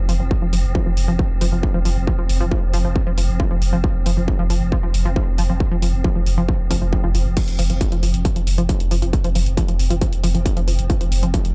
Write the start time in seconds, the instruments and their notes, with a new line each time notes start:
Already playing: synth drone F3 C4
0.09 sub bass F1, synth arpeggio sound F3, open hi-hat
0.20 sub bass F1, synth arpeggio sound F3
0.31 kick
0.42 sub bass F1, synth arpeggio sound F3
0.53 sub bass F1, synth arpeggio sound F3, open hi-hat
0.64 sub bass F1
0.75 synth arpeggio sound F3, kick
0.86 sub bass F1, synth arpeggio sound F3
0.97 sub bass F1, open hi-hat
1.08 sub bass F1, synth arpeggio sound F3
1.19 synth arpeggio sound F3, kick
1.30 sub bass F1
1.41 sub bass F1, synth arpeggio sound F3, open hi-hat
1.52 sub bass F1, synth arpeggio sound F3
1.63 kick
1.74 sub bass F1, synth arpeggio sound F3
1.85 sub bass F1, synth arpeggio sound F3, open hi-hat
1.96 sub bass F1
2.07 synth arpeggio sound F3, kick
2.19 sub bass F1, synth arpeggio sound F3
2.29 sub bass F1, open hi-hat
2.41 sub bass F1, synth arpeggio sound F3
2.51 synth arpeggio sound F3, kick
2.63 sub bass F1
2.74 sub bass F1, synth arpeggio sound F3, open hi-hat
2.85 sub bass F1, synth arpeggio sound F3
2.96 kick
3.07 sub bass F1, synth arpeggio sound F3
3.18 sub bass F1, synth arpeggio sound F3, open hi-hat
3.29 sub bass F1
3.40 synth arpeggio sound F3, kick
3.51 sub bass F1, synth arpeggio sound F3
3.62 sub bass F1, open hi-hat
3.73 sub bass F1, synth arpeggio sound F3
3.84 synth arpeggio sound F3, kick
3.95 sub bass F1
4.06 sub bass F1, synth arpeggio sound F3, open hi-hat
4.17 sub bass F1, synth arpeggio sound F3
4.28 kick
4.39 sub bass F1, synth arpeggio sound F3
4.50 sub bass F1, synth arpeggio sound F3, open hi-hat
4.61 sub bass F1
4.72 synth arpeggio sound F3, kick
4.83 sub bass F1, synth arpeggio sound F3
4.94 sub bass F1, open hi-hat
5.05 sub bass F1, synth arpeggio sound F3
5.16 synth arpeggio sound F3, kick
5.27 sub bass F1
5.38 sub bass F1, synth arpeggio sound F3, open hi-hat
5.49 sub bass F1, synth arpeggio sound F3
5.60 kick
5.71 sub bass F1, synth arpeggio sound F3
5.82 sub bass F1, synth arpeggio sound F3, open hi-hat
5.94 sub bass F1
6.04 synth arpeggio sound F3, kick
6.16 sub bass F1, synth arpeggio sound F3
6.26 sub bass F1, open hi-hat
6.38 sub bass F1, synth arpeggio sound F3
6.49 synth arpeggio sound F3, kick
6.60 sub bass F1
6.71 sub bass F1, synth arpeggio sound F3, kick, open hi-hat
6.82 sub bass F1, synth arpeggio sound F3
6.93 kick
7.04 sub bass F1, synth arpeggio sound F3
7.15 sub bass F1, synth arpeggio sound F3, open hi-hat
7.26 sub bass F1
7.37 synth drone F3 C4, synth arpeggio sound F3, kick, closed hi-hat, crash
7.48 sub bass F1, closed hi-hat
7.59 sub bass F1, synth arpeggio sound F3, open hi-hat
7.70 sub bass F1, synth arpeggio sound F3, closed hi-hat
7.81 kick, closed hi-hat
7.92 sub bass F1, synth arpeggio sound F3, closed hi-hat
8.03 sub bass F1, synth arpeggio sound F3, open hi-hat
8.14 sub bass F1, closed hi-hat
8.25 synth arpeggio sound F3, kick, closed hi-hat
8.36 sub bass F1, synth arpeggio sound F3, closed hi-hat
8.47 sub bass F1, open hi-hat
8.58 sub bass F1, synth arpeggio sound F3, closed hi-hat
8.69 synth arpeggio sound F3, kick, closed hi-hat
8.80 sub bass F1, closed hi-hat
8.91 sub bass F1, synth arpeggio sound F3, open hi-hat
9.02 sub bass F1, synth arpeggio sound F3, closed hi-hat
9.13 kick, closed hi-hat
9.24 sub bass F1, synth arpeggio sound F3, closed hi-hat
9.35 sub bass F1, synth arpeggio sound F3, open hi-hat
9.46 sub bass F1, closed hi-hat
9.57 synth arpeggio sound F3, kick, closed hi-hat
9.68 sub bass F1, synth arpeggio sound F3, closed hi-hat
9.79 sub bass F1, open hi-hat
9.90 sub bass F1, synth arpeggio sound F3, closed hi-hat
10.01 synth arpeggio sound F3, kick, closed hi-hat
10.13 sub bass F1, closed hi-hat
10.24 sub bass F1, synth arpeggio sound F3, open hi-hat
10.35 sub bass F1, synth arpeggio sound F3, closed hi-hat
10.46 kick, closed hi-hat
10.57 sub bass F1, synth arpeggio sound F3, closed hi-hat
10.68 sub bass F1, synth arpeggio sound F3, open hi-hat
10.79 sub bass F1, closed hi-hat
10.90 synth arpeggio sound F3, kick, closed hi-hat
11.01 sub bass F1, synth arpeggio sound F3, closed hi-hat
11.12 sub bass F1, open hi-hat
11.23 sub bass F1, synth arpeggio sound F3, closed hi-hat
11.34 synth arpeggio sound F3, kick, closed hi-hat
11.45 sub bass F1, closed hi-hat